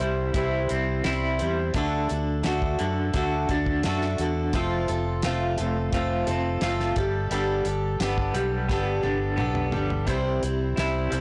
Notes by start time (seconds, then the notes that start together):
Already playing: C3 E4
0.00 C2 G3 C4 E4 C5, closed hi-hat
0.34 C2 C3 E3 G3 C4 E4 C5, kick, closed hi-hat
0.69 C2 G3 C4 E4 C5, closed hi-hat
1.04 C2 G3 C4 E4 C5, snare, closed hi-hat
1.39 E2 G3 C4 E4 C5, closed hi-hat
1.74 D2 D3 A3 D4 F#4 A4, kick, closed hi-hat
2.09 D2 D4 F#4 A4, closed hi-hat
2.43 D2 A3 D4 F#4 A4, snare, closed hi-hat
2.62 kick
2.79 F#2 D3 F#4 A4, closed hi-hat
2.83 D4
3.14 D2 D3 A3 D4 F#4 A4, kick, closed hi-hat
3.49 D2 F#4 A4, kick, closed hi-hat
3.53 D4
3.66 kick
3.83 F#2 A3 D4, snare, closed hi-hat
3.87 F#4 A4
4.01 snare
4.18 E2 D3 F#4 A4, closed hi-hat
4.23 D4
4.53 F1 F3 A3 C4 F4 A4, kick, closed hi-hat
4.88 F1 F4 A4, closed hi-hat
4.92 C4
5.22 F1 A3 C4 F4, snare, closed hi-hat
5.27 A4
5.57 F1 A3 C4 F4 A4, closed hi-hat
5.93 F1 F3 A3 C4 F4 A4, kick, closed hi-hat
6.27 F1 C4 F4 A4, closed hi-hat
6.61 F#1 A3 C4 F4, snare, closed hi-hat
6.65 A4
6.80 snare
6.96 G1 G3 D4 G4 A4, kick, closed hi-hat
7.31 G1 G3 B3 D4 G4 A4, closed hi-hat
7.65 G1 D4 G4 A4, closed hi-hat
8.00 G1 B3 D4 G4 A4, snare, closed hi-hat
8.18 kick
8.34 B1 G3 D4 G4 A4, closed hi-hat
8.69 G1 G3 B3 D4 G4 A4, kick, snare
9.03 G1 D4 G4 A4, high tom
9.37 B1 B3 D4 G4 A4, mid tom
9.55 mid tom
9.72 G1 G3 G4 A4, floor tom
9.76 D4
9.90 floor tom
10.07 C2 C3 E3 G3 C4 E4 C5, kick, closed hi-hat
10.43 C2 G3 C4 E4 C5, closed hi-hat
10.77 C2 G3 C4 E4 C5, snare, closed hi-hat
11.10 C2 G3 C4 E4 C5, closed hi-hat
11.15 G3